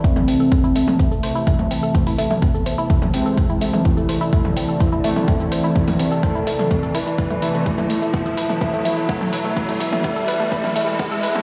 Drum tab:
HH |--o---o---o---o-|-oo---o---o---o-|--o---o---o---o-|-oo---o---o---o-|
SH |xxxxxxxxxxxxxxxx|xxxxxxxxxxxxxxxx|xxxxxxxxxxxxxxxx|xxxxxxxxxxxxxxxx|
T2 |-o-----o-----o--|---o-----o-----o|-----o-----o----|-o-----o-----o--|
BD |o---o---o---o---|o---o---o---o---|o---o---o---o---|o---o---o---o---|

HH |--o---o---o---o-|-oo---o---o---o-|
SH |xxxxxxxxxxxxxxxx|xxxxxxxxxxxxxxxx|
T2 |-o-----o-----o--|---o-----o-----o|
BD |o---o---o---o---|o---o---o---o---|